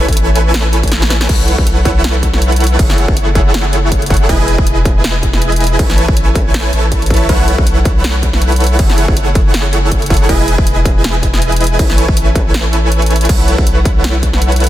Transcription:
0.08 A1, kick, closed hi-hat
0.13 closed hi-hat
0.17 closed hi-hat
0.36 closed hi-hat
0.54 snare, closed hi-hat
0.73 closed hi-hat
0.83 kick, closed hi-hat
0.88 closed hi-hat
0.92 snare, closed hi-hat
1.02 snare
1.10 snare, closed hi-hat
1.21 snare
1.29 B1 E4 A4 C#5 F#5, kick, closed hi-hat, crash
1.48 closed hi-hat
1.58 B1 E4 B4, kick
1.67 closed hi-hat
1.85 kick, closed hi-hat
2.04 snare, closed hi-hat
2.23 kick, closed hi-hat
2.34 snare
2.42 closed hi-hat
2.52 closed hi-hat
2.56 closed hi-hat
2.60 closed hi-hat
2.64 closed hi-hat
2.67 closed hi-hat
2.79 F#1 G#4 A4 C#5, kick, closed hi-hat, crash
2.90 snare
2.98 closed hi-hat
3.08 F#1, kick
3.17 closed hi-hat
3.35 kick, closed hi-hat
3.54 snare, closed hi-hat
3.73 closed hi-hat
3.92 kick, closed hi-hat
4.02 closed hi-hat
4.06 closed hi-hat
4.10 kick, closed hi-hat
4.14 closed hi-hat
4.17 closed hi-hat
4.29 E1 E4 G#4 B4 D#5 G#5, kick, closed hi-hat, crash
4.48 closed hi-hat
4.58 E1 E4 G#4 B4 D#5, kick
4.67 closed hi-hat
4.85 kick, closed hi-hat
5.04 snare, closed hi-hat
5.23 kick, closed hi-hat
5.33 snare
5.42 closed hi-hat
5.52 closed hi-hat
5.56 closed hi-hat
5.60 closed hi-hat
5.64 closed hi-hat
5.67 closed hi-hat
5.79 A1, kick, closed hi-hat, crash
5.90 snare
5.98 closed hi-hat
6.08 A1 E4 A4 B4 C#5, kick
6.17 closed hi-hat
6.35 kick, closed hi-hat
6.54 snare, closed hi-hat
6.73 A1 E4 A4 B4 C#5 A5, closed hi-hat
6.92 kick, closed hi-hat
7.02 closed hi-hat
7.06 closed hi-hat
7.10 kick, closed hi-hat
7.14 closed hi-hat
7.17 closed hi-hat
7.29 B1 E4 A4 B4 C#5 F#5, kick, closed hi-hat, crash
7.48 closed hi-hat
7.58 B1 E4 A4, kick
7.67 closed hi-hat
7.85 kick, closed hi-hat
8.04 snare, closed hi-hat
8.23 kick, closed hi-hat
8.33 snare
8.42 closed hi-hat
8.52 closed hi-hat
8.56 closed hi-hat
8.60 closed hi-hat
8.64 closed hi-hat
8.67 closed hi-hat
8.79 F#1, kick, closed hi-hat, crash
8.90 snare
8.98 closed hi-hat
9.08 F#1 E4 G#4 A4 C#5, kick
9.17 closed hi-hat
9.35 kick, closed hi-hat
9.54 snare, closed hi-hat
9.73 closed hi-hat
9.92 kick, closed hi-hat
10.02 closed hi-hat
10.06 closed hi-hat
10.10 kick, closed hi-hat
10.14 closed hi-hat
10.17 closed hi-hat
10.29 E1 E4 G#4 B4 D#5 G#5, kick, closed hi-hat, crash
10.48 closed hi-hat
10.58 E1 E4 D#5, kick
10.67 closed hi-hat
10.85 kick, closed hi-hat
11.04 snare, closed hi-hat
11.23 kick, closed hi-hat
11.34 snare
11.42 closed hi-hat
11.52 closed hi-hat
11.56 closed hi-hat
11.61 closed hi-hat
11.64 closed hi-hat
11.67 closed hi-hat
11.79 A1 E4 A4 C#5 G#5, kick, closed hi-hat, crash
11.90 snare
11.98 closed hi-hat
12.08 A1, kick
12.17 closed hi-hat
12.35 kick, closed hi-hat
12.54 snare, closed hi-hat
12.73 closed hi-hat
12.92 closed hi-hat
13.02 closed hi-hat
13.06 closed hi-hat
13.11 closed hi-hat
13.16 closed hi-hat
13.21 closed hi-hat
13.25 closed hi-hat
13.29 B1, kick, closed hi-hat, crash
13.48 closed hi-hat
13.58 B1 E4 B4, kick
13.67 closed hi-hat
13.85 kick, closed hi-hat
14.04 snare, closed hi-hat
14.23 kick, closed hi-hat
14.33 snare
14.42 closed hi-hat
14.52 closed hi-hat
14.56 closed hi-hat
14.60 closed hi-hat
14.64 closed hi-hat

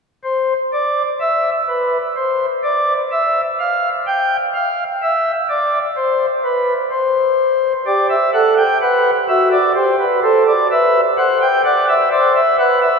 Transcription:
0.24 C5
0.73 D5
1.20 E5
1.68 B4
2.16 C5
2.63 D5
3.11 E5
3.59 F5
4.07 G5
4.54 F5
5.02 E5
5.49 D5
5.96 C5
6.44 B4
6.91 C5
7.86 G4 D5
8.09 E5
8.33 A4 F#5
8.57 G5
8.81 B4 F#5
9.28 F#4 E5
9.52 D5
9.75 G4 C5
9.99 B4
10.23 A4 C5
10.47 D5
10.71 B4 E5
11.18 C5 F#5
11.41 G5
11.64 D5 F#5
11.89 E5
12.11 C5 D5
12.36 E5
12.59 B4 F#5
12.82 E5

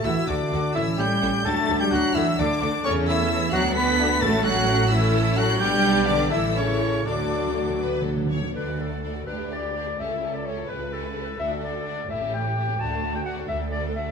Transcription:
0.04 D2 E3 A3 E4 F#4 A4 E5 E6
0.27 D2 D3 A3 D4 F#4 A4 D5 D6
0.52 D2 A3 F#4 A4
0.74 A1 E3 A3 C#4 E4 A4 E5 E6
0.97 A1 G3 A3 C#4 E4 G4 A4 G5 G6
1.10 G3
1.22 A1 A3 C#4 E4 A4
1.45 D2 F#3 A3 D4 F#4 A4 A5 A6
1.68 D2 A3 D4 F#4 A4
1.80 G3 G4 G5 G6
1.91 D2 F#3 A3 D4 F#4 A4 F#5 F#6
2.14 D2 E3 A3 D4 E4 F#4 A4 E5 E6
2.38 D2 D3 A3 D4 F#4 A4 D5 D6
2.61 D2 A3 D4 F#4 A4
2.83 E2 C#3 A3 C#4 A4 C#5 C#6
3.07 E3 E4 E5 E6
3.32 A3 C#4
3.52 D2 F#3 B3 D4 F#4 A4 F#5 F#6
3.76 B3 B4 B5 B6
3.99 A3 D4
4.21 A1 A2 A3 C#4 F#4 A4 A5 A6
4.44 F#3 F#4 F#5 F#6
4.67 A3 C#4
4.90 E3 A3 C#4 E4 A4 E5 E6
5.36 F#3 A3 C#4 F#4 F#5 F#6
5.59 B1 G3 B3 D4 G4 D5 G5 G6
6.06 D3 D4 D5 D6
6.30 A1 E3 A3 E4 A4 E5 E6
6.55 C#3 C#4 C#5 C#6
7.05 D2 D3 F#3 A3 D4 F#4 A4 D5 D6
7.23 D3
7.38 D3
7.46 D3
7.55 D3
7.62 D3
7.70 D3
7.80 B4
7.86 D3
7.94 D3
8.02 D3 A4
8.09 D3
8.17 D3
8.26 D3
8.30 D3 C#5
8.42 D3
8.55 D2 D4 A4 B4 D5
8.67 F#4 A4 D5
8.80 D4 A4 D5
8.90 F#4 A4 D5
9.02 D4 A4 D5
9.13 F#4 A4 D5
9.26 D2 D4 G4 B4 D5
9.38 D4 E4 B4
9.49 D4 G4 D5
9.61 D4 E4 B4
9.74 D4 G4 D5
9.86 D4 E4 B4
9.98 C#2 C#4 G4 A4 C#5 E5
10.11 E4 A4
10.21 C#4 G4 C#5
10.33 E4 A4 D5
10.46 C#4 G4 C#5
10.58 E4 A4
10.68 C#2 C#4 G4 B4 C#5
10.80 E4 A4
10.92 C#4 G4 A4 C#5
11.04 E4 A4
11.15 C#4 G4 C#5
11.26 E4 A4
11.37 D2 D4 F#4 A4 D5 E5
11.49 D4 F#4 A4
11.63 D4 F#4 D5
11.73 D4 F#4 A4
11.85 D4 F#4 D5
11.97 D4 F#4 A4
12.08 A1 A2 A3 E4 G4 E5
12.22 C#4 G4 A4
12.33 A3 E4 G4 G5
12.45 C#4 G4 A4
12.57 A3 E4 G4
12.68 C#4 G4 A4
12.78 D2 A3 F#4 D5 A5
12.91 D4 A4
13.03 A3 F#4 D5
13.15 D4 A4 G5
13.25 A3 F#4 D5 F#5
13.38 D4 A4
13.48 D2 A3 F#4 A4 D5 E5
13.61 D4 A4
13.72 A3 F#4 D5
13.84 D4 A4
13.95 A3 F#4 D5 E5
14.07 D4 A4

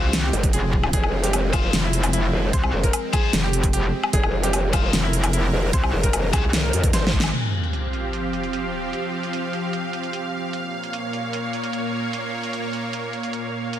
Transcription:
Already playing: C2 G#3 C4 F4 A#4
0.03 G#3 F4 C5
0.13 snare, closed hi-hat
0.24 G4
0.33 G1, closed hi-hat
0.43 kick, closed hi-hat
0.53 F1 G#4, closed hi-hat
0.73 kick
0.83 low woodblock
0.93 F1 F3 G#4, kick, closed hi-hat
1.04 low woodblock
1.23 G4, closed hi-hat
1.33 closed hi-hat, low woodblock
1.53 G#3 F4 C5, kick, closed hi-hat, low woodblock
1.63 G#3 F4 C5
1.73 F1, snare, closed hi-hat
1.83 E4
1.93 closed hi-hat
2.03 closed hi-hat, low woodblock
2.13 E4, closed hi-hat
2.33 F1
2.53 C2 C5, kick, closed hi-hat
2.64 low woodblock
2.73 F1
2.84 A#4, kick, closed hi-hat
2.93 closed hi-hat, low woodblock
3.13 G#3 F4 G#4 C5, kick, closed hi-hat, low woodblock
3.23 G#3 F4 C5
3.33 F1, snare, closed hi-hat
3.44 G4
3.53 closed hi-hat
3.64 kick, closed hi-hat
3.73 G4, closed hi-hat
4.04 low woodblock
4.13 F1 G#4 A#4, kick, closed hi-hat
4.23 low woodblock
4.43 G4, closed hi-hat
4.53 closed hi-hat, low woodblock
4.73 G#3 F4 C5, kick, closed hi-hat, low woodblock
4.83 G#3 F4 C5
4.93 F1, snare, closed hi-hat
5.03 E4
5.13 closed hi-hat
5.24 closed hi-hat, low woodblock
5.33 E4, closed hi-hat
5.53 F1
5.73 C2 C5, kick, closed hi-hat
5.84 low woodblock
5.93 F1
6.04 A#4, kick, closed hi-hat
6.13 F1, closed hi-hat, low woodblock
6.33 C2 G#3 F4 G#4 C5, kick, closed hi-hat, low woodblock
6.53 C2, snare, closed hi-hat
6.64 A#4
6.73 F2, closed hi-hat
6.84 kick, closed hi-hat
6.93 G#1 C5, snare, closed hi-hat
7.07 snare
7.13 G#1, kick
7.20 snare, low woodblock
7.33 F3 C4 G4 F5, closed hi-hat, crash, sub drop
7.64 closed hi-hat
7.73 closed hi-hat
7.93 closed hi-hat
8.13 closed hi-hat
8.33 closed hi-hat
8.44 closed hi-hat
8.53 closed hi-hat
8.93 closed hi-hat
9.23 closed hi-hat
9.33 closed hi-hat
9.53 closed hi-hat
9.73 closed hi-hat
9.93 closed hi-hat
10.03 closed hi-hat
10.13 closed hi-hat
10.53 A#2 A#3 C#5, closed hi-hat
10.84 closed hi-hat
10.93 closed hi-hat
11.13 closed hi-hat
11.33 closed hi-hat
11.53 closed hi-hat
11.64 closed hi-hat
11.73 closed hi-hat
12.13 closed hi-hat
12.44 closed hi-hat
12.53 closed hi-hat
12.73 closed hi-hat
12.93 closed hi-hat
13.13 closed hi-hat
13.23 closed hi-hat
13.33 closed hi-hat
13.73 F3 C4 G4 F5, closed hi-hat

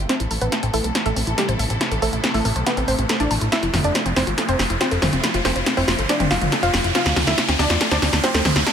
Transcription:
Already playing: riser
0.09 C3 E3 A3 C4 E4 A4 C5, snare, closed hi-hat
0.20 A1 E4, closed hi-hat
0.31 A1 A4, open hi-hat
0.41 A1 B3 B4 C5, closed hi-hat
0.52 E5, snare, closed hi-hat
0.63 A1 C4, closed hi-hat
0.74 A1 A3 E4 A4, open hi-hat
0.84 B1 A4, closed hi-hat
0.95 C5, snare, closed hi-hat
1.06 A1 A3 A4 E5, closed hi-hat
1.16 A1 C4, open hi-hat
1.27 A1 E4, closed hi-hat
1.38 G3 G4 A4, snare, closed hi-hat
1.49 A1 C5, closed hi-hat
1.59 A1 E5, open hi-hat
1.70 A1 C4, closed hi-hat
1.81 E4, snare, closed hi-hat
1.91 A1 A4, closed hi-hat
2.02 A1 A3 A4 C5, open hi-hat
2.13 A1 E5, closed hi-hat
2.24 C4, snare, closed hi-hat
2.34 A1 A3 E4 A4, open hi-hat
2.45 A1 A4, open hi-hat
2.56 B1 C5, closed hi-hat
2.66 B3 B4 E5, snare, closed hi-hat
2.77 A1 C4, closed hi-hat
2.88 A1 C4 C5, open hi-hat
2.99 A1 C4, closed hi-hat
3.09 A4, snare, closed hi-hat
3.20 A1 D4 E4 D5, closed hi-hat
3.31 A1 A5, open hi-hat
3.41 A1 E4, closed hi-hat
3.52 C3 F3 C4 E4 F4 E5, snare, closed hi-hat
3.63 F1 E4, closed hi-hat
3.74 F1 F4, snare, open hi-hat, mid tom
3.84 F1 D4 A4 D5, closed hi-hat
3.95 C5, snare, closed hi-hat
4.06 F1 C4, closed hi-hat
4.16 F1 C4 E4 C5, snare, open hi-hat
4.27 G1 F4, closed hi-hat
4.38 A4, snare, closed hi-hat
4.49 F1 C4 C5, closed hi-hat
4.59 F1 C4, snare, open hi-hat
4.70 F1 E4, closed hi-hat
4.81 C4 F4 C5, snare, closed hi-hat
4.91 F1 A4, closed hi-hat
5.02 F1 C5, snare, open hi-hat, mid tom
5.13 F1 C4, closed hi-hat
5.24 E4, snare, closed hi-hat
5.34 F1 F4, closed hi-hat
5.45 F1 C4 A4 C5, snare, open hi-hat
5.56 F1 C5, closed hi-hat
5.66 C4, snare, closed hi-hat
5.77 F1 C4 E4 C5, open hi-hat
5.88 F1 F4, snare, open hi-hat
5.99 G1 A4, closed hi-hat
6.09 D4 C5 D5, snare, closed hi-hat
6.20 F1 C4, closed hi-hat, mid tom
6.31 F1 E4 F4 F5, snare, open hi-hat
6.41 F1 F4, closed hi-hat, mid tom
6.52 A4, snare, closed hi-hat
6.63 F1 F4 C5 F5, closed hi-hat
6.74 F1 C4, snare, open hi-hat
6.84 F1 E4, closed hi-hat
6.95 C4 D4 F4 F5, snare, closed hi-hat
7.06 D2 D4, snare, closed hi-hat
7.16 D2 F4, snare, open hi-hat, mid tom
7.27 D2 E4 A4 E5, snare, closed hi-hat
7.38 C5, snare, closed hi-hat
7.49 D2 C4, snare, closed hi-hat
7.59 D2 D4 D5, snare, open hi-hat
7.70 E2 F4, snare, closed hi-hat
7.81 A4, snare, closed hi-hat
7.91 D2 D4 C5 D5, snare, closed hi-hat
8.02 D2 C4, snare, open hi-hat
8.13 D2 D4, snare, closed hi-hat
8.24 C4 F4 C5, snare, closed hi-hat
8.34 D2 A4, snare, closed hi-hat
8.45 D2 C5, snare, open hi-hat, mid tom
8.56 D2 C4, snare, closed hi-hat
8.66 D4, snare, closed hi-hat

